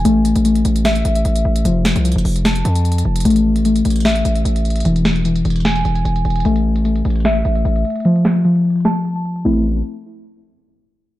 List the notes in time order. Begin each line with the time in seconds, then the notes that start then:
0.05 A1 A3, closed hi-hat
0.25 closed hi-hat
0.36 A1, closed hi-hat
0.45 A3, closed hi-hat
0.55 closed hi-hat
0.65 A1, closed hi-hat
0.76 closed hi-hat
0.85 E5, snare, closed hi-hat
0.95 closed hi-hat
1.05 A1, closed hi-hat
1.15 closed hi-hat
1.25 A1, closed hi-hat
1.36 closed hi-hat
1.45 A1
1.56 closed hi-hat
1.65 F1 F3, closed hi-hat
1.85 snare, closed hi-hat
1.96 C2, closed hi-hat
2.05 F3, closed hi-hat
2.12 F1, closed hi-hat
2.18 closed hi-hat
2.25 F1, open hi-hat
2.36 closed hi-hat
2.45 A5, snare, closed hi-hat
2.56 closed hi-hat
2.65 F2, closed hi-hat
2.75 closed hi-hat
2.85 closed hi-hat
2.92 closed hi-hat
2.98 closed hi-hat
3.05 F1
3.16 closed hi-hat
3.20 closed hi-hat
3.25 A1 A3, closed hi-hat
3.30 closed hi-hat
3.36 closed hi-hat
3.56 closed hi-hat
3.65 A3, closed hi-hat
3.76 closed hi-hat
3.85 A1, closed hi-hat
3.90 closed hi-hat
3.96 closed hi-hat
4.00 closed hi-hat
4.05 E5, snare, closed hi-hat
4.16 closed hi-hat
4.25 A1, closed hi-hat
4.36 closed hi-hat
4.45 A1, closed hi-hat
4.56 closed hi-hat
4.65 closed hi-hat
4.70 closed hi-hat
4.76 closed hi-hat
4.80 closed hi-hat
4.85 E1 E3, closed hi-hat
4.96 closed hi-hat
5.05 snare
5.16 closed hi-hat
5.25 E3, closed hi-hat
5.36 closed hi-hat
5.45 E1, closed hi-hat
5.50 closed hi-hat
5.56 closed hi-hat
5.60 closed hi-hat
5.65 G#5, snare, closed hi-hat
5.76 closed hi-hat
5.85 E1, closed hi-hat
5.95 closed hi-hat
6.05 E1, closed hi-hat
6.16 closed hi-hat
6.25 E1, closed hi-hat
6.30 closed hi-hat
6.36 closed hi-hat
6.40 closed hi-hat
6.45 A1 A3, closed hi-hat
6.56 closed hi-hat
6.76 closed hi-hat
6.85 A3, closed hi-hat
6.96 closed hi-hat
7.05 A1, closed hi-hat
7.10 closed hi-hat
7.16 closed hi-hat
7.20 closed hi-hat
7.25 E5, snare, closed hi-hat
7.35 closed hi-hat
7.45 A1, closed hi-hat
7.55 closed hi-hat
7.65 A1, closed hi-hat
7.76 closed hi-hat
7.85 closed hi-hat
7.90 closed hi-hat
7.96 closed hi-hat
8.00 closed hi-hat
8.05 F3, closed hi-hat
8.16 closed hi-hat
8.25 snare
8.36 closed hi-hat
8.45 F3, closed hi-hat
8.56 closed hi-hat
8.65 closed hi-hat, open hi-hat
8.70 closed hi-hat
8.76 closed hi-hat
8.80 closed hi-hat
8.85 A5, snare, closed hi-hat
8.95 closed hi-hat
9.05 closed hi-hat
9.15 closed hi-hat
9.25 closed hi-hat
9.36 closed hi-hat
9.45 A1 A3 C4 E4, crash